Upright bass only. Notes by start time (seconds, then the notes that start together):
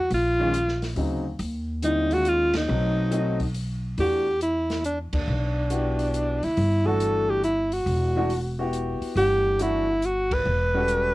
0.11 A#1
0.96 D2
1.39 D#2
2.69 B1
3.98 E2
5.13 D#2
5.28 B1
6.43 D2
6.57 G1
7.86 E1
9.01 muted upright bass stroke
9.16 G1
10.45 E1